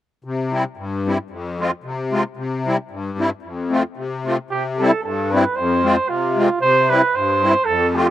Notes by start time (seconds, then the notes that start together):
0.24 C3
0.51 G3 C4 E4
0.77 G2
1.06 G3 C4 E4
1.30 F2
1.59 G#3 C4 F4
1.84 C3
2.12 G#3 C4 F4
2.37 C3
2.66 G3 C4 E4
2.91 G2
3.18 G3 C4 E4
3.42 F2
3.70 A3 C4 F4
3.97 C3
4.25 A3 C4 F4
4.50 C3 G4
4.79 G3 C4 E4 A4
5.04 G2 A4
5.31 G3 C4 E4 B4
5.56 F2 C5
5.84 G#3 C4 F4
6.08 C3 F4
6.36 G#3 C4 F4
6.61 C3 C5
6.90 G3 C4 E4 B4
7.14 G2 C5
7.42 G3 C4 E4
7.65 F2 A4
7.89 A4
7.94 A3 C4 F4 G4